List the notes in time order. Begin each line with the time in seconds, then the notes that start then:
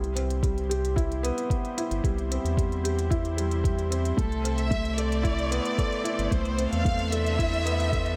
Already playing: C2 C3 G3 E4 C5
0.04 closed hi-hat
0.15 C4, closed hi-hat
0.30 closed hi-hat
0.43 G3, kick, closed hi-hat
0.58 closed hi-hat
0.69 G4, closed hi-hat
0.85 closed hi-hat
0.96 E4, kick, closed hi-hat
1.12 closed hi-hat
1.23 B3, closed hi-hat
1.38 closed hi-hat
1.50 B3, kick, closed hi-hat
1.65 closed hi-hat
1.77 E4, closed hi-hat
1.91 G1, closed hi-hat
2.04 C2 G3, kick, closed hi-hat
2.18 closed hi-hat
2.31 C4, closed hi-hat
2.44 E2, closed hi-hat
2.57 G3, kick, closed hi-hat
2.72 closed hi-hat
2.84 G4, closed hi-hat
2.99 closed hi-hat
3.10 E4, kick, closed hi-hat
3.25 closed hi-hat
3.37 G3, closed hi-hat
3.51 closed hi-hat
3.64 E2 G3, kick, closed hi-hat
3.79 closed hi-hat
3.90 C4, closed hi-hat
4.05 closed hi-hat
4.17 C2 A3 A4, kick, closed hi-hat
4.32 closed hi-hat
4.44 C4, closed hi-hat
4.57 E5, closed hi-hat
4.71 A3, kick, closed hi-hat
4.85 closed hi-hat
4.97 A4 D5, closed hi-hat
5.12 closed hi-hat
5.23 E4, kick, closed hi-hat
5.39 closed hi-hat
5.51 B3, closed hi-hat
5.65 closed hi-hat
5.78 A4, kick, closed hi-hat
5.92 closed hi-hat
6.04 E4, closed hi-hat
6.18 G1, closed hi-hat
6.30 C2 A3 D4 C5, kick, closed hi-hat
6.45 closed hi-hat
6.58 C4, closed hi-hat
6.70 E2 F5, closed hi-hat
6.85 A3, kick, closed hi-hat
6.99 closed hi-hat
7.10 A4 E5, closed hi-hat
7.26 closed hi-hat
7.38 E4, kick, closed hi-hat
7.53 closed hi-hat
7.65 B3, closed hi-hat
7.80 closed hi-hat
7.92 A4, kick, closed hi-hat
8.06 closed hi-hat